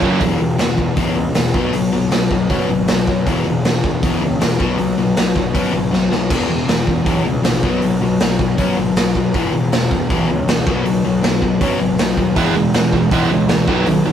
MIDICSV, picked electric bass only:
0, 0, Header, 1, 2, 480
1, 0, Start_track
1, 0, Tempo, 380711
1, 267, Time_signature, 4, 2, 24, 8
1, 10347, Tempo, 377596
1, 17867, End_track
2, 0, Start_track
2, 0, Title_t, "Picked electric bass"
2, 0, Program_c, 0, 34
2, 260, Note_on_c, 0, 28, 92
2, 469, Note_off_c, 0, 28, 0
2, 506, Note_on_c, 0, 28, 81
2, 712, Note_off_c, 0, 28, 0
2, 737, Note_on_c, 0, 28, 84
2, 947, Note_off_c, 0, 28, 0
2, 986, Note_on_c, 0, 28, 91
2, 1192, Note_off_c, 0, 28, 0
2, 1222, Note_on_c, 0, 35, 92
2, 1431, Note_off_c, 0, 35, 0
2, 1453, Note_on_c, 0, 37, 84
2, 1666, Note_off_c, 0, 37, 0
2, 1704, Note_on_c, 0, 28, 87
2, 1912, Note_off_c, 0, 28, 0
2, 1945, Note_on_c, 0, 35, 87
2, 2153, Note_off_c, 0, 35, 0
2, 2176, Note_on_c, 0, 35, 95
2, 2387, Note_off_c, 0, 35, 0
2, 2416, Note_on_c, 0, 35, 79
2, 2628, Note_off_c, 0, 35, 0
2, 2652, Note_on_c, 0, 35, 92
2, 2865, Note_off_c, 0, 35, 0
2, 2907, Note_on_c, 0, 35, 93
2, 3114, Note_off_c, 0, 35, 0
2, 3146, Note_on_c, 0, 42, 87
2, 3353, Note_off_c, 0, 42, 0
2, 3381, Note_on_c, 0, 32, 91
2, 3591, Note_off_c, 0, 32, 0
2, 3626, Note_on_c, 0, 35, 90
2, 3834, Note_off_c, 0, 35, 0
2, 3879, Note_on_c, 0, 42, 90
2, 4120, Note_on_c, 0, 28, 94
2, 4139, Note_off_c, 0, 42, 0
2, 4322, Note_off_c, 0, 28, 0
2, 4359, Note_on_c, 0, 28, 87
2, 4561, Note_off_c, 0, 28, 0
2, 4607, Note_on_c, 0, 28, 90
2, 4806, Note_off_c, 0, 28, 0
2, 4838, Note_on_c, 0, 28, 91
2, 5041, Note_off_c, 0, 28, 0
2, 5080, Note_on_c, 0, 35, 91
2, 5281, Note_off_c, 0, 35, 0
2, 5323, Note_on_c, 0, 37, 89
2, 5523, Note_off_c, 0, 37, 0
2, 5566, Note_on_c, 0, 28, 87
2, 5765, Note_off_c, 0, 28, 0
2, 5800, Note_on_c, 0, 35, 87
2, 6002, Note_off_c, 0, 35, 0
2, 6040, Note_on_c, 0, 35, 90
2, 6241, Note_off_c, 0, 35, 0
2, 6273, Note_on_c, 0, 35, 91
2, 6477, Note_off_c, 0, 35, 0
2, 6503, Note_on_c, 0, 35, 87
2, 6712, Note_off_c, 0, 35, 0
2, 6757, Note_on_c, 0, 35, 95
2, 6960, Note_off_c, 0, 35, 0
2, 6990, Note_on_c, 0, 42, 93
2, 7196, Note_off_c, 0, 42, 0
2, 7229, Note_on_c, 0, 32, 75
2, 7435, Note_off_c, 0, 32, 0
2, 7464, Note_on_c, 0, 35, 94
2, 7672, Note_off_c, 0, 35, 0
2, 7697, Note_on_c, 0, 35, 86
2, 7908, Note_off_c, 0, 35, 0
2, 7949, Note_on_c, 0, 28, 92
2, 8154, Note_off_c, 0, 28, 0
2, 8179, Note_on_c, 0, 28, 78
2, 8389, Note_off_c, 0, 28, 0
2, 8418, Note_on_c, 0, 28, 91
2, 8628, Note_off_c, 0, 28, 0
2, 8664, Note_on_c, 0, 28, 79
2, 8871, Note_off_c, 0, 28, 0
2, 8903, Note_on_c, 0, 35, 92
2, 9110, Note_off_c, 0, 35, 0
2, 9131, Note_on_c, 0, 37, 88
2, 9343, Note_off_c, 0, 37, 0
2, 9371, Note_on_c, 0, 34, 88
2, 9583, Note_off_c, 0, 34, 0
2, 9623, Note_on_c, 0, 35, 92
2, 9830, Note_off_c, 0, 35, 0
2, 9860, Note_on_c, 0, 35, 90
2, 10067, Note_off_c, 0, 35, 0
2, 10098, Note_on_c, 0, 35, 85
2, 10306, Note_off_c, 0, 35, 0
2, 10340, Note_on_c, 0, 35, 95
2, 10548, Note_off_c, 0, 35, 0
2, 10582, Note_on_c, 0, 35, 89
2, 10790, Note_off_c, 0, 35, 0
2, 10826, Note_on_c, 0, 42, 100
2, 11033, Note_off_c, 0, 42, 0
2, 11065, Note_on_c, 0, 32, 87
2, 11273, Note_off_c, 0, 32, 0
2, 11310, Note_on_c, 0, 35, 91
2, 11516, Note_off_c, 0, 35, 0
2, 11547, Note_on_c, 0, 35, 87
2, 11755, Note_off_c, 0, 35, 0
2, 11790, Note_on_c, 0, 28, 97
2, 11997, Note_off_c, 0, 28, 0
2, 12047, Note_on_c, 0, 28, 85
2, 12247, Note_off_c, 0, 28, 0
2, 12293, Note_on_c, 0, 28, 81
2, 12490, Note_off_c, 0, 28, 0
2, 12518, Note_on_c, 0, 28, 91
2, 12722, Note_off_c, 0, 28, 0
2, 12758, Note_on_c, 0, 35, 97
2, 12962, Note_off_c, 0, 35, 0
2, 13005, Note_on_c, 0, 37, 91
2, 13206, Note_off_c, 0, 37, 0
2, 13250, Note_on_c, 0, 37, 81
2, 13449, Note_off_c, 0, 37, 0
2, 13476, Note_on_c, 0, 35, 83
2, 13681, Note_off_c, 0, 35, 0
2, 13713, Note_on_c, 0, 35, 94
2, 13919, Note_off_c, 0, 35, 0
2, 13956, Note_on_c, 0, 35, 85
2, 14161, Note_off_c, 0, 35, 0
2, 14183, Note_on_c, 0, 35, 91
2, 14393, Note_off_c, 0, 35, 0
2, 14434, Note_on_c, 0, 35, 87
2, 14639, Note_off_c, 0, 35, 0
2, 14677, Note_on_c, 0, 42, 94
2, 14881, Note_off_c, 0, 42, 0
2, 14913, Note_on_c, 0, 32, 90
2, 15118, Note_off_c, 0, 32, 0
2, 15156, Note_on_c, 0, 35, 90
2, 15360, Note_off_c, 0, 35, 0
2, 15390, Note_on_c, 0, 39, 78
2, 15596, Note_off_c, 0, 39, 0
2, 15629, Note_on_c, 0, 28, 96
2, 15835, Note_off_c, 0, 28, 0
2, 15865, Note_on_c, 0, 28, 82
2, 16073, Note_off_c, 0, 28, 0
2, 16107, Note_on_c, 0, 28, 94
2, 16314, Note_off_c, 0, 28, 0
2, 16346, Note_on_c, 0, 28, 94
2, 16552, Note_off_c, 0, 28, 0
2, 16583, Note_on_c, 0, 35, 92
2, 16790, Note_off_c, 0, 35, 0
2, 16806, Note_on_c, 0, 37, 92
2, 17020, Note_off_c, 0, 37, 0
2, 17039, Note_on_c, 0, 37, 96
2, 17256, Note_off_c, 0, 37, 0
2, 17301, Note_on_c, 0, 35, 85
2, 17508, Note_off_c, 0, 35, 0
2, 17525, Note_on_c, 0, 35, 96
2, 17739, Note_off_c, 0, 35, 0
2, 17763, Note_on_c, 0, 35, 80
2, 17867, Note_off_c, 0, 35, 0
2, 17867, End_track
0, 0, End_of_file